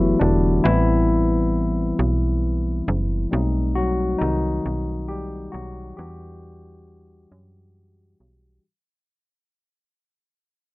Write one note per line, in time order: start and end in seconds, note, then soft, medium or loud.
0.00 0.15 F#1 medium
0.00 0.64 E3 medium
0.00 0.65 F#3 medium
0.00 0.15 A3 soft
0.00 0.15 B3 soft
0.00 0.15 E4 loud
0.00 0.65 F#4 loud
0.00 0.65 G4 medium
0.19 0.60 E1 medium
0.19 0.61 D3 medium
0.19 0.65 D4 medium
0.64 1.93 A1 medium
0.64 2.82 E3 medium
0.64 1.23 G3 medium
0.64 1.23 B3 soft
0.64 1.23 C4 soft
0.64 2.81 E4 medium
1.99 2.82 B1 medium
2.88 3.27 F#1 medium
3.31 4.16 B1 medium
3.31 4.59 G3 medium
3.31 4.60 A3 soft
3.31 4.60 C4 soft
3.31 4.17 D#4 medium
3.75 4.17 F#3 medium
3.75 4.20 F#4 medium
4.18 4.60 C2 medium
4.18 5.04 D#3 medium
4.18 5.03 D#4 medium
4.66 5.49 B1 medium
5.08 5.50 G3 medium
5.08 5.53 G4 medium
5.52 5.93 B1 medium
5.52 5.94 F#3 medium
5.52 5.97 F#4 medium
5.97 7.27 E2 medium
5.97 7.71 E3 medium
5.97 7.26 G3 soft
5.97 7.26 D4 soft
5.97 7.27 F#4 soft
5.97 7.70 G4 medium
7.32 8.15 F#2 medium
8.20 8.60 B1 medium